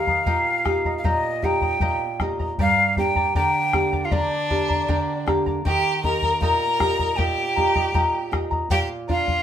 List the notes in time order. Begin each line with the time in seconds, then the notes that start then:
Already playing: D#3 A#3 D#4 G4 F5
0.07 A#4 D#5 A#5, bombo low
0.26 A#2 G4 A#4 D#5 G5 A#5, bombo low
0.65 A#3 D#4 G4 A#4 D#5 G5 A#5, bombo rim, bombo low
0.85 A#4 D#5 A#5, bombo low
0.98 F5
1.04 A#2 G4 A#4 D#5 G5 A#5, bombo low
1.42 A#3 D#4 G4 A#4 D#5 G5 A#5, bombo low
1.61 A#4 D#5 A#5, bombo low
1.80 A#2 G4 A#4 D#5 G5 A#5, bombo low
2.20 A#3 D#4 G4 A#4 D#5 G5 A#5, bombo rim, bombo low
2.39 A#4 D#5 A#5, bombo low
2.58 G2 G4 A#4 D5 F5 G5 A#5, bombo low
2.96 A#3 D4 G4 A#4 D5 G5 A#5, bombo low
3.16 A#4 D5 A#5, bombo low
3.35 D3 G4 A#4 D5 G5 A#5, bombo low
3.73 A#3 D4 G4 A#4 D5 G5 A#5, bombo rim, bombo low
3.92 A#4 D5 A#5, bombo low
4.04 F4 F5
4.11 D3 D4 G4 A#4 D5 G5 A#5, bombo low
4.50 A#3 D4 G4 A#4 D5 G5 A#5, bombo low
4.69 A#4 D5 A#5, bombo low
4.88 D3 G4 A#4 D5 G5 A#5, bombo low
5.26 A#3 D4 G4 A#4 D5 G5 A#5, bombo rim, bombo low
5.46 A#4 D5 A#5, bombo low
5.65 D#3 G4 A#4 D#5 G5 A#5, bombo low
6.03 A#3 D#4 G4 A#4 D#5 G5 A#5, bombo low
6.22 A#4 D#5 A#5, bombo low
6.41 A#2 G4 A#4 D#5 G5 A#5, bombo low
6.79 A#3 D#4 G4 A#4 D#5 G5 A#5, bombo rim, bombo low
6.99 A#4 D#5 A#5, bombo low
7.16 A#2 G4 A#4 D#5 G5 A#5, bombo low
7.55 A#3 D#4 G4 A#4 D#5 G5 A#5, bombo low
7.75 A#4 D#5 A#5, bombo low
7.94 A#2 G4 A#4 D#5 G5 A#5, bombo low
8.31 A#3 D#4 G4 A#4 D#5 G5 A#5, bombo rim, bombo low
8.51 A#4 D#5 A#5, bombo low
8.70 A#2 G4 A#4 D5 F5 G5, bombo low
9.08 A#3 D4 F4 A#4 D5 F5, bombo low
9.26 D5 F5, bombo low